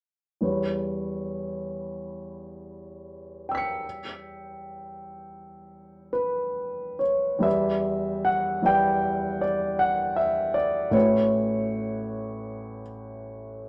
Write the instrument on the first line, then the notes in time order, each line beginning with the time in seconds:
grand piano
0.41 E2 G3 E4 B4 C#5
3.49 G5 E6
3.55 B6 C#7
6.13 B4
6.99 C#5
7.39 E2 G3 E4 B4 E5
7.43 D5
8.25 F#5
8.62 E2 G3 E4 B4 D5 G5
9.41 D5
9.79 F#5
10.16 E5
10.54 D5
10.91 A1 A3 E4 F#4 B4 C#5